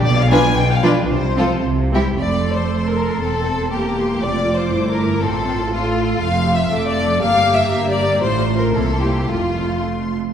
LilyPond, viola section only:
\new Staff \with { instrumentName = "Viola section" } { \time 2/4 \key f \major \tempo 4 = 117 << { r8 d'16 r8. d'16 r16 | r8 c'16 r8. c'16 r16 | a'2~ | a'4 g'4 |
f'4 e'4 | f'4 a'4 | f'8 g'8 a'4 | g'4 g'4 |
f'4 e'4 | f'4. r8 | } \\ { r8 f16 r8. f16 r16 | r8 f16 r8. g16 r16 | a4 a4 | c'4 bes4 |
a4 a4 | c'8 c'8 a4 | a4 a4 | bes4 bes4 |
a4 bes4 | a4. r8 | } >> }